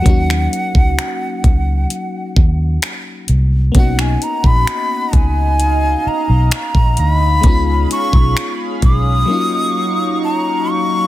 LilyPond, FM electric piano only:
\new Staff \with { instrumentName = "FM electric piano" } { \time 4/4 \key ees \minor \tempo 4 = 65 <ges bes des' ees' ges'>1 | <ais b des' dis' fis'>1 | <aes ces' des' ees' f'>2 <ges bes des' ees' f'>2 | }